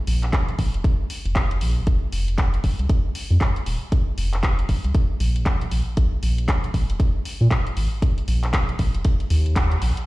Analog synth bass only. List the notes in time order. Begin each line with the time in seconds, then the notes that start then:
0.07 A#1
0.59 A#1
0.74 F1
1.25 F1
1.61 A#1
1.87 F1
2.13 F1
2.64 F1
2.79 C2
3.31 F2
3.66 D#1
4.18 F1
4.69 F1
4.84 C2
5.20 A#1
5.71 A#1
5.97 A#1
6.23 A#1
6.74 A#1
6.90 F1
7.41 A#2
7.77 G#1
8.28 A#1
8.79 A#1
8.95 F1
9.31 D#2
9.82 A#1